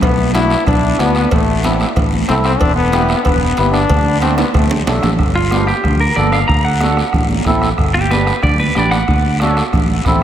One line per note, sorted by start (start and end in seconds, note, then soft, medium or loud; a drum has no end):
0.01 0.54 B1 loud
0.01 0.32 B3 loud
0.01 bombo low medium
0.01 bombo rim medium
0.01 cowbell loud
0.01 high conga soft
0.01 long guiro medium
0.18 high conga medium
0.33 0.57 B3 medium
0.33 0.57 D4 medium
0.33 0.64 E4 loud
0.33 0.57 F#4 medium
0.33 bombo rim medium
0.33 cowbell medium
0.33 high conga loud
0.33 short guiro medium
0.50 bombo rim medium
0.50 short guiro medium
0.66 0.93 B1 medium
0.66 1.02 D4 loud
0.66 bombo low medium
0.66 bombo rim medium
0.66 cowbell medium
0.66 high conga soft
0.66 low conga medium
0.66 long guiro medium
0.98 1.25 D2 medium
0.98 1.21 B3 medium
0.98 1.32 B3 loud
0.98 1.21 D4 medium
0.98 1.22 F#4 medium
0.98 bombo rim medium
0.98 cowbell medium
0.98 high conga medium
0.98 low timbale medium
0.98 short guiro medium
1.15 bombo rim medium
1.15 short guiro medium
1.31 1.84 A1 medium
1.31 1.77 A3 medium
1.31 bombo low medium
1.31 bombo rim medium
1.31 cowbell loud
1.31 high conga soft
1.31 long guiro medium
1.63 1.86 C4 medium
1.63 1.87 E4 medium
1.63 1.87 A4 medium
1.63 bombo rim medium
1.63 cowbell medium
1.63 high conga loud
1.63 short guiro medium
1.80 bombo rim medium
1.80 short guiro medium
1.96 2.22 A1 medium
1.96 bombo low medium
1.96 bombo rim medium
1.96 cowbell medium
1.96 high conga soft
1.96 low conga medium
1.96 long guiro medium
2.12 high conga medium
2.28 2.55 C2 medium
2.28 2.36 C4 loud
2.28 2.51 C4 medium
2.28 2.52 E4 medium
2.28 2.52 A4 loud
2.28 bombo rim medium
2.28 cowbell medium
2.28 high conga medium
2.28 short guiro medium
2.44 2.61 C4 loud
2.44 bombo rim medium
2.44 short guiro medium
2.60 3.13 E1 loud
2.60 2.76 D4 loud
2.60 bombo low medium
2.60 bombo rim medium
2.60 cowbell loud
2.60 high conga soft
2.60 long guiro medium
2.76 3.22 B3 loud
2.92 3.15 B3 medium
2.92 3.16 E4 medium
2.92 3.16 G4 medium
2.92 bombo rim loud
2.92 cowbell medium
2.92 high conga loud
2.92 short guiro medium
3.09 bombo rim medium
3.09 short guiro medium
3.24 3.52 E1 medium
3.24 3.70 B3 medium
3.24 bombo low medium
3.24 bombo rim medium
3.24 cowbell medium
3.24 high conga soft
3.24 low conga medium
3.24 long guiro medium
3.57 3.84 G1 medium
3.57 3.81 B3 medium
3.57 3.81 E4 medium
3.57 3.81 G4 medium
3.57 bombo rim medium
3.57 cowbell medium
3.57 high conga medium
3.57 short guiro medium
3.71 4.18 D4 loud
3.71 bombo rim loud
3.71 short guiro medium
3.89 4.42 D2 medium
3.89 bombo low medium
3.89 bombo rim medium
3.89 cowbell loud
3.89 high conga soft
3.89 low conga medium
3.89 long guiro medium
4.21 4.44 A3 medium
4.21 4.37 C4 loud
4.21 4.45 D4 medium
4.21 4.45 F#4 medium
4.21 bombo rim loud
4.21 cowbell medium
4.21 high conga medium
4.21 short guiro medium
4.37 4.53 B3 medium
4.37 bombo rim medium
4.37 high conga loud
4.37 high timbale loud
4.37 short guiro medium
4.54 4.81 D2 loud
4.54 4.88 A3 medium
4.54 bombo low medium
4.54 bombo rim medium
4.54 cowbell medium
4.54 low conga medium
4.54 long guiro medium
4.71 low conga medium
4.71 low timbale loud
4.86 5.02 B1 medium
4.86 5.11 F#3 medium
4.86 5.10 A3 medium
4.86 5.10 D4 medium
4.86 5.10 A4 medium
4.86 bombo rim medium
4.86 cowbell medium
4.86 low conga loud
4.86 low timbale loud
4.86 short guiro medium
5.03 5.18 A1 medium
5.03 bombo rim medium
5.03 low conga loud
5.03 low timbale loud
5.03 short guiro medium
5.19 5.71 G1 loud
5.19 bombo low medium
5.19 bombo rim medium
5.19 high conga soft
5.19 long guiro medium
5.35 5.67 F4 loud
5.51 5.74 B3 medium
5.51 5.75 D4 medium
5.51 5.75 G4 medium
5.51 bombo rim medium
5.51 high conga loud
5.51 short guiro medium
5.67 5.99 G4 medium
5.67 bombo rim medium
5.67 short guiro medium
5.84 6.11 D2 loud
5.84 bombo low medium
5.84 bombo rim medium
5.84 high conga soft
5.84 low conga medium
5.84 long guiro medium
6.01 6.16 A#4 medium
6.16 6.43 G1 medium
6.16 6.39 B3 medium
6.16 6.40 D4 medium
6.16 6.40 A4 medium
6.16 6.32 D5 medium
6.16 bombo rim medium
6.16 high conga medium
6.16 low conga medium
6.16 short guiro medium
6.32 6.47 F5 medium
6.32 bombo rim medium
6.32 short guiro medium
6.48 7.01 D2 loud
6.48 6.64 A#5 loud
6.48 bombo low medium
6.48 bombo rim medium
6.48 high conga soft
6.48 long guiro medium
6.65 7.28 F#5 loud
6.81 7.04 D4 medium
6.81 7.04 F#4 medium
6.81 7.05 A4 medium
6.81 bombo rim medium
6.81 high conga loud
6.81 short guiro medium
6.97 bombo rim medium
6.97 short guiro medium
7.13 7.40 A1 loud
7.13 bombo low medium
7.13 bombo rim medium
7.13 high conga soft
7.13 low conga medium
7.13 long guiro medium
7.30 high conga medium
7.45 7.72 A1 medium
7.45 7.69 C4 loud
7.45 7.69 E4 medium
7.45 7.69 A4 loud
7.45 bombo low medium
7.45 bombo rim medium
7.45 high conga medium
7.45 short guiro medium
7.62 bombo rim medium
7.62 short guiro medium
7.78 8.31 G1 loud
7.78 bombo low medium
7.78 bombo rim medium
7.78 high conga soft
7.78 long guiro medium
7.94 8.10 G4 loud
7.94 high conga medium
8.11 8.34 D4 medium
8.11 8.34 G4 medium
8.11 8.43 B4 medium
8.11 8.34 B4 medium
8.11 bombo rim medium
8.11 high conga loud
8.11 short guiro medium
8.27 bombo rim medium
8.27 short guiro medium
8.43 8.69 D2 loud
8.43 8.59 D5 medium
8.43 bombo low medium
8.43 bombo rim medium
8.43 high conga soft
8.43 low conga medium
8.43 long guiro medium
8.59 8.77 B4 medium
8.59 high conga medium
8.75 9.02 A1 loud
8.75 8.98 D4 medium
8.75 8.99 G4 medium
8.75 8.99 B4 medium
8.75 8.91 D5 medium
8.75 bombo rim medium
8.75 high conga medium
8.75 low conga medium
8.75 short guiro medium
8.91 9.55 F#5 loud
8.91 bombo rim medium
8.91 short guiro medium
9.08 9.60 D2 loud
9.08 bombo low medium
9.08 bombo rim medium
9.08 high conga soft
9.08 long guiro medium
9.40 9.64 D4 medium
9.40 9.64 F#4 medium
9.40 9.64 A4 loud
9.40 bombo rim loud
9.40 high conga loud
9.40 short guiro medium
9.57 bombo rim medium
9.57 short guiro medium
9.73 9.99 A1 loud
9.73 bombo low medium
9.73 bombo rim medium
9.73 high conga soft
9.73 low conga medium
9.73 long guiro medium
10.05 10.23 A1 medium
10.05 10.23 C4 loud
10.05 10.23 E4 medium
10.05 10.23 A4 loud
10.05 bombo low medium
10.05 bombo rim medium
10.05 high conga medium
10.05 low conga medium
10.05 short guiro medium